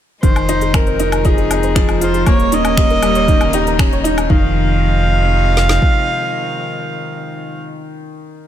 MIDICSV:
0, 0, Header, 1, 7, 480
1, 0, Start_track
1, 0, Key_signature, -4, "minor"
1, 0, Tempo, 508475
1, 221, Time_signature, 4, 2, 24, 8
1, 7999, End_track
2, 0, Start_track
2, 0, Title_t, "Viola"
2, 0, Program_c, 0, 41
2, 219, Note_on_c, 0, 72, 92
2, 708, Note_on_c, 0, 70, 84
2, 722, Note_off_c, 0, 72, 0
2, 1196, Note_on_c, 0, 68, 88
2, 1210, Note_off_c, 0, 70, 0
2, 1925, Note_on_c, 0, 72, 92
2, 1939, Note_off_c, 0, 68, 0
2, 2153, Note_off_c, 0, 72, 0
2, 2159, Note_on_c, 0, 73, 104
2, 2394, Note_on_c, 0, 75, 120
2, 2408, Note_off_c, 0, 73, 0
2, 3827, Note_off_c, 0, 75, 0
2, 4063, Note_on_c, 0, 77, 104
2, 7160, Note_off_c, 0, 77, 0
2, 7999, End_track
3, 0, Start_track
3, 0, Title_t, "Synth arpeggio sound"
3, 0, Program_c, 1, 84
3, 218, Note_on_c, 1, 63, 93
3, 268, Note_off_c, 1, 63, 0
3, 461, Note_on_c, 1, 65, 71
3, 542, Note_off_c, 1, 65, 0
3, 583, Note_on_c, 1, 68, 65
3, 664, Note_off_c, 1, 68, 0
3, 824, Note_on_c, 1, 72, 71
3, 904, Note_off_c, 1, 72, 0
3, 944, Note_on_c, 1, 63, 86
3, 991, Note_off_c, 1, 63, 0
3, 1188, Note_on_c, 1, 65, 79
3, 1266, Note_off_c, 1, 65, 0
3, 1302, Note_on_c, 1, 68, 74
3, 1383, Note_off_c, 1, 68, 0
3, 1546, Note_on_c, 1, 72, 70
3, 1625, Note_off_c, 1, 72, 0
3, 1663, Note_on_c, 1, 63, 97
3, 1711, Note_off_c, 1, 63, 0
3, 1902, Note_on_c, 1, 65, 72
3, 1983, Note_off_c, 1, 65, 0
3, 2022, Note_on_c, 1, 68, 70
3, 2103, Note_off_c, 1, 68, 0
3, 2258, Note_on_c, 1, 73, 75
3, 2341, Note_off_c, 1, 73, 0
3, 2384, Note_on_c, 1, 63, 97
3, 2431, Note_off_c, 1, 63, 0
3, 2625, Note_on_c, 1, 67, 75
3, 2704, Note_off_c, 1, 67, 0
3, 2745, Note_on_c, 1, 70, 79
3, 2825, Note_off_c, 1, 70, 0
3, 2983, Note_on_c, 1, 73, 75
3, 3064, Note_off_c, 1, 73, 0
3, 3101, Note_on_c, 1, 63, 105
3, 3150, Note_off_c, 1, 63, 0
3, 3348, Note_on_c, 1, 67, 74
3, 3426, Note_off_c, 1, 67, 0
3, 3471, Note_on_c, 1, 70, 81
3, 3548, Note_off_c, 1, 70, 0
3, 3711, Note_on_c, 1, 73, 75
3, 3787, Note_off_c, 1, 73, 0
3, 3824, Note_on_c, 1, 63, 112
3, 3871, Note_off_c, 1, 63, 0
3, 4065, Note_on_c, 1, 63, 99
3, 4286, Note_off_c, 1, 63, 0
3, 7999, End_track
4, 0, Start_track
4, 0, Title_t, "Grand piano"
4, 0, Program_c, 2, 0
4, 216, Note_on_c, 2, 51, 69
4, 399, Control_c, 2, 64, 127
4, 446, Note_off_c, 2, 51, 0
4, 462, Note_on_c, 2, 63, 83
4, 689, Note_off_c, 2, 63, 0
4, 700, Note_on_c, 2, 60, 64
4, 837, Note_off_c, 2, 60, 0
4, 942, Note_on_c, 2, 63, 80
4, 1168, Note_off_c, 2, 63, 0
4, 1182, Note_on_c, 2, 63, 94
4, 1409, Note_off_c, 2, 63, 0
4, 1425, Note_on_c, 2, 63, 68
4, 1651, Note_off_c, 2, 63, 0
4, 1657, Note_on_c, 2, 53, 96
4, 1795, Note_off_c, 2, 53, 0
4, 1897, Note_on_c, 2, 65, 76
4, 2127, Note_off_c, 2, 65, 0
4, 2144, Note_on_c, 2, 58, 101
4, 2151, Control_c, 2, 64, 0
4, 2304, Control_c, 2, 64, 127
4, 2370, Note_off_c, 2, 58, 0
4, 2380, Note_on_c, 2, 61, 69
4, 2608, Note_off_c, 2, 61, 0
4, 2625, Note_on_c, 2, 58, 73
4, 2760, Note_off_c, 2, 58, 0
4, 2859, Note_on_c, 2, 55, 71
4, 2996, Note_off_c, 2, 55, 0
4, 3097, Note_on_c, 2, 51, 80
4, 3327, Note_off_c, 2, 51, 0
4, 3340, Note_on_c, 2, 63, 103
4, 3568, Note_off_c, 2, 63, 0
4, 3576, Note_on_c, 2, 61, 79
4, 3715, Note_off_c, 2, 61, 0
4, 3816, Note_on_c, 2, 63, 108
4, 4046, Note_off_c, 2, 63, 0
4, 4060, Note_on_c, 2, 51, 92
4, 4072, Control_c, 2, 64, 0
4, 4253, Control_c, 2, 64, 127
4, 4283, Note_off_c, 2, 51, 0
4, 7999, End_track
5, 0, Start_track
5, 0, Title_t, "String quartet"
5, 0, Program_c, 3, 48
5, 215, Note_on_c, 3, 63, 83
5, 216, Note_on_c, 3, 56, 68
5, 220, Note_on_c, 3, 48, 78
5, 220, Note_on_c, 3, 53, 68
5, 2119, Note_off_c, 3, 56, 0
5, 2119, Note_off_c, 3, 63, 0
5, 2121, Note_off_c, 3, 48, 0
5, 2121, Note_off_c, 3, 53, 0
5, 2128, Note_on_c, 3, 55, 76
5, 2131, Note_on_c, 3, 58, 77
5, 2132, Note_on_c, 3, 49, 86
5, 2136, Note_on_c, 3, 63, 95
5, 4035, Note_off_c, 3, 55, 0
5, 4036, Note_off_c, 3, 58, 0
5, 4037, Note_off_c, 3, 49, 0
5, 4039, Note_off_c, 3, 63, 0
5, 4057, Note_on_c, 3, 53, 79
5, 4062, Note_on_c, 3, 56, 76
5, 4063, Note_on_c, 3, 48, 86
5, 4063, Note_on_c, 3, 63, 97
5, 7154, Note_off_c, 3, 53, 0
5, 7160, Note_off_c, 3, 56, 0
5, 7160, Note_off_c, 3, 63, 0
5, 7161, Note_off_c, 3, 48, 0
5, 7999, End_track
6, 0, Start_track
6, 0, Title_t, "Analog synth bass"
6, 0, Program_c, 4, 38
6, 215, Note_on_c, 4, 29, 79
6, 2114, Note_off_c, 4, 29, 0
6, 2138, Note_on_c, 4, 27, 86
6, 4035, Note_off_c, 4, 27, 0
6, 4057, Note_on_c, 4, 29, 102
6, 5461, Note_off_c, 4, 29, 0
6, 7999, End_track
7, 0, Start_track
7, 0, Title_t, "Drums"
7, 217, Note_on_c, 9, 36, 91
7, 219, Note_on_c, 9, 42, 36
7, 311, Note_off_c, 9, 36, 0
7, 313, Note_off_c, 9, 42, 0
7, 340, Note_on_c, 9, 42, 17
7, 340, Note_on_c, 9, 77, 56
7, 435, Note_off_c, 9, 42, 0
7, 435, Note_off_c, 9, 77, 0
7, 460, Note_on_c, 9, 42, 65
7, 554, Note_off_c, 9, 42, 0
7, 579, Note_on_c, 9, 42, 28
7, 673, Note_off_c, 9, 42, 0
7, 697, Note_on_c, 9, 36, 94
7, 699, Note_on_c, 9, 26, 92
7, 699, Note_on_c, 9, 42, 39
7, 699, Note_on_c, 9, 77, 62
7, 791, Note_off_c, 9, 36, 0
7, 794, Note_off_c, 9, 26, 0
7, 794, Note_off_c, 9, 42, 0
7, 794, Note_off_c, 9, 77, 0
7, 819, Note_on_c, 9, 42, 18
7, 913, Note_off_c, 9, 42, 0
7, 939, Note_on_c, 9, 42, 66
7, 1034, Note_off_c, 9, 42, 0
7, 1060, Note_on_c, 9, 42, 30
7, 1060, Note_on_c, 9, 77, 64
7, 1155, Note_off_c, 9, 42, 0
7, 1155, Note_off_c, 9, 77, 0
7, 1177, Note_on_c, 9, 42, 36
7, 1178, Note_on_c, 9, 36, 88
7, 1271, Note_off_c, 9, 42, 0
7, 1273, Note_off_c, 9, 36, 0
7, 1302, Note_on_c, 9, 42, 19
7, 1396, Note_off_c, 9, 42, 0
7, 1423, Note_on_c, 9, 42, 68
7, 1423, Note_on_c, 9, 77, 63
7, 1517, Note_off_c, 9, 42, 0
7, 1517, Note_off_c, 9, 77, 0
7, 1539, Note_on_c, 9, 42, 29
7, 1634, Note_off_c, 9, 42, 0
7, 1658, Note_on_c, 9, 36, 96
7, 1661, Note_on_c, 9, 26, 87
7, 1661, Note_on_c, 9, 42, 39
7, 1752, Note_off_c, 9, 36, 0
7, 1756, Note_off_c, 9, 26, 0
7, 1756, Note_off_c, 9, 42, 0
7, 1781, Note_on_c, 9, 42, 20
7, 1781, Note_on_c, 9, 77, 59
7, 1876, Note_off_c, 9, 42, 0
7, 1876, Note_off_c, 9, 77, 0
7, 1902, Note_on_c, 9, 42, 68
7, 1996, Note_off_c, 9, 42, 0
7, 2022, Note_on_c, 9, 42, 30
7, 2116, Note_off_c, 9, 42, 0
7, 2138, Note_on_c, 9, 36, 104
7, 2138, Note_on_c, 9, 42, 43
7, 2138, Note_on_c, 9, 77, 62
7, 2232, Note_off_c, 9, 42, 0
7, 2232, Note_off_c, 9, 77, 0
7, 2233, Note_off_c, 9, 36, 0
7, 2261, Note_on_c, 9, 42, 20
7, 2356, Note_off_c, 9, 42, 0
7, 2381, Note_on_c, 9, 42, 78
7, 2475, Note_off_c, 9, 42, 0
7, 2498, Note_on_c, 9, 42, 30
7, 2498, Note_on_c, 9, 77, 65
7, 2593, Note_off_c, 9, 42, 0
7, 2593, Note_off_c, 9, 77, 0
7, 2617, Note_on_c, 9, 36, 109
7, 2619, Note_on_c, 9, 26, 93
7, 2619, Note_on_c, 9, 42, 44
7, 2711, Note_off_c, 9, 36, 0
7, 2714, Note_off_c, 9, 26, 0
7, 2714, Note_off_c, 9, 42, 0
7, 2740, Note_on_c, 9, 42, 20
7, 2835, Note_off_c, 9, 42, 0
7, 2856, Note_on_c, 9, 42, 73
7, 2856, Note_on_c, 9, 77, 66
7, 2950, Note_off_c, 9, 42, 0
7, 2950, Note_off_c, 9, 77, 0
7, 2976, Note_on_c, 9, 42, 33
7, 3070, Note_off_c, 9, 42, 0
7, 3096, Note_on_c, 9, 36, 101
7, 3098, Note_on_c, 9, 42, 39
7, 3191, Note_off_c, 9, 36, 0
7, 3193, Note_off_c, 9, 42, 0
7, 3217, Note_on_c, 9, 42, 22
7, 3217, Note_on_c, 9, 77, 64
7, 3311, Note_off_c, 9, 42, 0
7, 3311, Note_off_c, 9, 77, 0
7, 3334, Note_on_c, 9, 42, 78
7, 3429, Note_off_c, 9, 42, 0
7, 3464, Note_on_c, 9, 42, 30
7, 3558, Note_off_c, 9, 42, 0
7, 3577, Note_on_c, 9, 36, 110
7, 3581, Note_on_c, 9, 26, 93
7, 3581, Note_on_c, 9, 42, 43
7, 3581, Note_on_c, 9, 77, 60
7, 3672, Note_off_c, 9, 36, 0
7, 3676, Note_off_c, 9, 26, 0
7, 3676, Note_off_c, 9, 42, 0
7, 3676, Note_off_c, 9, 77, 0
7, 3705, Note_on_c, 9, 42, 21
7, 3800, Note_off_c, 9, 42, 0
7, 3823, Note_on_c, 9, 42, 80
7, 3918, Note_off_c, 9, 42, 0
7, 3943, Note_on_c, 9, 42, 34
7, 3943, Note_on_c, 9, 77, 66
7, 4038, Note_off_c, 9, 42, 0
7, 4038, Note_off_c, 9, 77, 0
7, 4058, Note_on_c, 9, 36, 114
7, 4153, Note_off_c, 9, 36, 0
7, 5259, Note_on_c, 9, 38, 64
7, 5353, Note_off_c, 9, 38, 0
7, 5375, Note_on_c, 9, 38, 80
7, 5470, Note_off_c, 9, 38, 0
7, 5495, Note_on_c, 9, 36, 85
7, 5590, Note_off_c, 9, 36, 0
7, 7999, End_track
0, 0, End_of_file